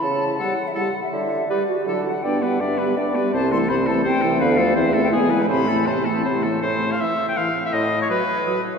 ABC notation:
X:1
M:3/4
L:1/16
Q:1/4=164
K:Ador
V:1 name="Flute"
a4 f3 e f3 e | e4 d4 a2 f2 | g2 f2 e4 d4 | a2 c'2 b2 a2 g4 |
[K:Am] f4 e3 g ^g3 b | b4 a4 z4 | z4 c'4 c'4 | z4 ^d'4 d'4 |]
V:2 name="Oboe"
z4 A4 A4 | z4 B4 A4 | d2 B2 d2 B2 d2 B2 | c2 A2 c2 A2 c2 A2 |
[K:Am] B2 A2 c2 A2 ^G2 B2 | c2 A2 c2 A2 c2 A2 | c3 f e3 g f3 e | ^d3 ^c B6 z2 |]
V:3 name="Clarinet"
z4 E4 E4 | z4 G2 F2 E2 F2 | D2 B,2 D2 B,2 D2 B,2 | C2 A,2 C2 A,2 C2 A,2 |
[K:Am] B,2 A,2 C2 E2 B,2 ^G,2 | C2 A,2 C2 A,2 C2 A,2 | z4 E4 E4 | z4 B4 B4 |]
V:4 name="French horn" clef=bass
z4 G,4 G,4 | z4 G,4 F,4 | B,2 G,2 B,2 G,2 B,2 G,2 | C,2 E,2 C,2 E,2 C,2 E,2 |
[K:Am] D,2 F,2 E,2 A,2 ^G,2 E,2 | C,2 E,2 C,2 E,2 C,2 E,2 | z4 E,4 E,4 | z4 ^F,4 F,4 |]
V:5 name="Bassoon" clef=bass
^C,4 z8 | D,4 z4 D,4 | G,,4 G,,4 G,,4 | C,,4 C,,4 C,,4 |
[K:Am] D,,4 E,,4 E,,4 | A,,4 A,,4 A,,4 | A,,4 z8 | A,,4 z8 |]